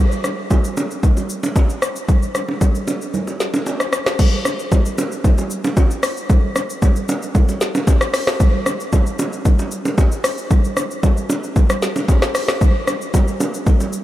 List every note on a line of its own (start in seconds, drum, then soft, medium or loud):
0.12 shaker medium
0.24 cross-stick medium
0.24 low bongo medium
0.24 shaker medium
0.51 kick medium
0.51 high bongo medium
0.51 low conga medium
0.51 shaker medium
0.64 shaker medium
0.77 high bongo medium
0.77 low bongo medium
0.77 shaker loud
0.91 shaker medium
1.03 kick loud
1.03 low conga medium
1.03 shaker medium
1.17 high bongo medium
1.17 shaker medium
1.29 shaker medium
1.43 low bongo medium
1.43 shaker medium
1.56 kick loud
1.56 high bongo medium
1.56 shaker medium
1.70 shaker medium
1.82 cross-stick loud
1.82 shaker medium
1.96 shaker medium
2.09 kick loud
2.09 low conga medium
2.09 shaker medium
2.22 shaker soft
2.35 cross-stick medium
2.35 low bongo medium
2.35 shaker medium
2.48 low bongo medium
2.61 kick loud
2.61 high bongo medium
2.61 low conga medium
2.61 shaker medium
2.75 shaker medium
2.88 high bongo medium
2.88 low bongo medium
2.88 shaker loud
3.01 shaker medium
3.14 low conga medium
3.14 shaker medium
3.27 high bongo medium
3.27 shaker medium
3.40 snare medium
3.40 shaker medium
3.54 low bongo medium
3.54 shaker medium
3.66 high bongo medium
3.66 shaker medium
3.80 cross-stick medium
3.80 shaker medium
3.93 cross-stick loud
3.93 shaker medium
4.06 cross-stick loud
4.06 snare medium
4.06 shaker medium
4.19 kick loud
4.19 crash loud
4.19 low conga medium
4.19 shaker medium
4.45 cross-stick medium
4.45 low bongo medium
4.45 shaker medium
4.59 shaker medium
4.72 kick loud
4.72 high bongo medium
4.72 low conga medium
4.72 shaker medium
4.86 shaker medium
4.98 high bongo medium
4.98 low bongo medium
4.98 shaker loud
5.12 shaker medium
5.24 kick loud
5.24 low conga medium
5.24 shaker medium
5.38 high bongo medium
5.38 shaker medium
5.50 shaker medium
5.64 low bongo medium
5.64 shaker medium
5.77 kick loud
5.77 high bongo medium
5.77 shaker medium
5.91 shaker medium
6.03 cross-stick loud
6.03 open hi-hat medium
6.03 shaker medium
6.17 shaker medium
6.30 kick loud
6.30 low conga medium
6.30 shaker medium
6.56 cross-stick medium
6.56 low bongo medium
6.56 shaker medium
6.70 shaker medium
6.82 kick loud
6.82 high bongo medium
6.82 low conga medium
6.82 shaker medium
6.96 shaker medium
7.09 high bongo medium
7.09 low bongo medium
7.09 shaker loud
7.22 shaker medium
7.35 kick loud
7.35 low conga medium
7.35 shaker medium
7.49 high bongo medium
7.49 shaker medium
7.61 snare medium
7.61 shaker medium
7.75 low bongo medium
7.75 shaker medium
7.87 kick loud
7.87 high bongo medium
7.87 shaker medium
8.01 cross-stick loud
8.01 shaker medium
8.14 cross-stick loud
8.14 open hi-hat medium
8.14 shaker medium
8.27 cross-stick loud
8.27 snare medium
8.27 shaker medium
8.40 kick loud
8.40 low conga medium
8.40 shaker medium
8.66 cross-stick medium
8.66 low bongo medium
8.66 shaker medium
8.80 shaker medium
8.93 kick loud
8.93 high bongo medium
8.93 low conga medium
8.93 shaker medium
9.06 shaker medium
9.19 high bongo medium
9.19 low bongo medium
9.19 shaker loud
9.33 shaker medium
9.45 kick loud
9.45 low conga medium
9.45 shaker medium
9.59 high bongo medium
9.59 shaker medium
9.71 shaker medium
9.85 low bongo medium
9.85 shaker medium
9.98 kick loud
9.98 high bongo medium
9.98 shaker medium
10.12 shaker medium
10.24 cross-stick loud
10.24 open hi-hat medium
10.24 shaker medium
10.38 shaker medium
10.51 kick loud
10.51 low conga medium
10.51 shaker medium
10.64 shaker medium
10.77 cross-stick medium
10.77 low bongo medium
10.77 shaker medium
10.91 shaker medium
11.03 kick loud
11.03 high bongo medium
11.03 low conga medium
11.03 shaker medium
11.17 shaker medium
11.30 high bongo medium
11.30 low bongo medium
11.30 shaker loud
11.44 shaker medium
11.56 kick loud
11.56 low conga medium
11.56 shaker medium
11.70 cross-stick medium
11.70 shaker medium
11.82 snare medium
11.82 shaker medium
11.96 low bongo medium
11.96 shaker medium
12.08 kick loud
12.08 high bongo medium
12.08 shaker medium
12.22 cross-stick loud
12.22 snare medium
12.22 shaker medium
12.35 cross-stick loud
12.35 open hi-hat medium
12.35 shaker medium
12.48 cross-stick loud
12.48 snare medium
12.48 shaker medium
12.61 kick loud
12.61 low conga medium
12.61 shaker medium
12.87 cross-stick medium
12.87 low bongo medium
12.87 shaker medium
13.01 shaker medium
13.14 kick loud
13.14 high bongo medium
13.14 low conga medium
13.14 shaker medium
13.28 shaker medium
13.40 high bongo medium
13.40 low bongo medium
13.40 shaker loud
13.54 shaker medium
13.67 kick loud
13.67 low conga medium
13.67 shaker medium
13.80 high bongo medium
13.80 shaker medium
13.93 shaker medium